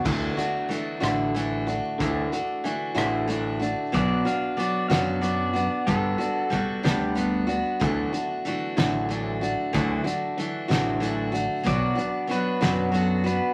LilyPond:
<<
  \new Staff \with { instrumentName = "Pedal steel guitar" } { \time 6/8 \key d \major \tempo 4. = 62 r2. | r2. | d''8 f''8 d''8 f''8 d''4 | a'4. g'8 r4 |
r2. | r2. | d''4 b'4 a'8 b'8 | }
  \new Staff \with { instrumentName = "Steel-string acoustic guitar" } { \time 6/8 \key d \major <d e a d' fis'>8 <a d' fis'>8 <e a d' fis'>8 <d e a d' fis'>8 <e a d' fis'>8 <a d' fis'>8 | <d e a d' fis'>8 <a d' fis'>8 <e a d' fis'>8 <d e a d' fis'>8 <e a d' fis'>8 <a d' fis'>8 | <b, fis b d' fis'>8 <b d' fis'>8 <fis b d' fis'>8 <b, fis b d' fis'>8 <fis b d' fis'>8 <b d' fis'>8 | <g b d' fis'>8 <b d' fis'>8 <g b d' fis'>8 <g b d'>8 <g b d' fis'>8 <b d' fis'>8 |
<d e a d' fis'>8 <a d' fis'>8 <e a d' fis'>8 <d e a d' fis'>8 <e a d' fis'>8 <a d' fis'>8 | <d e a d' fis'>8 <a d' fis'>8 <e a d' fis'>8 <d e a d' fis'>8 <e a d' fis'>8 <a d' fis'>8 | <b, fis b d' fis'>8 <b d' fis'>8 <fis b d' fis'>8 <b, fis b d' fis'>8 <fis b d' fis'>8 <b d' fis'>8 | }
  \new Staff \with { instrumentName = "Clean electric guitar" } { \clef bass \time 6/8 \key d \major <d a e'>8 <d a>8 <d a>8 <d a e'>4 <d a>8 | <d a e'>8 <d a>8 <d a>8 <d a e'>4 <d a>8 | <b, fis b>8 <b, fis>8 <b, fis>8 <b, fis b>4 <b, fis>8 | <g b d'>8 <g b>8 <g b>8 <g b d'>4 <g b>8 |
<d fis a>8 <d fis>8 <d fis>8 <d fis a>4 <d fis>8 | <d fis a>8 <d fis>8 <d fis>8 <d fis a>4 <d fis>8 | <b, fis b>8 <b, fis>8 <b, fis>8 <b, fis b>4 <b, fis>8 | }
  \new Staff \with { instrumentName = "Fingered electric bass" } { \clef bass \time 6/8 \key d \major d,8 r4 a,,4. | d,8 r4 a,,4. | b,,8 r4 fis,4. | g,,8 r4 d,4. |
d,8 r4 a,,4. | d,8 r4 a,,4. | b,,8 r4 fis,4. | }
  \new DrumStaff \with { instrumentName = "Drums" } \drummode { \time 6/8 <cymc bd>8 hh8 hh8 <hh ss>8 hh8 hh8 | <hh bd>8 hh8 hh8 <hh ss>8 hh8 hh8 | <hh bd>8 hh8 hh8 <hh sn>8 hh8 hh8 | <hh bd>8 hh8 <hh bd>8 <hh sn>8 hh8 hh8 |
<hh bd>8 hh8 hh8 <hh sn>8 hh8 hh8 | <hh bd>8 hh8 hh8 <hh sn>8 hh8 hh8 | <hh bd>8 hh8 hh8 <hh sn>8 hh8 hh8 | }
>>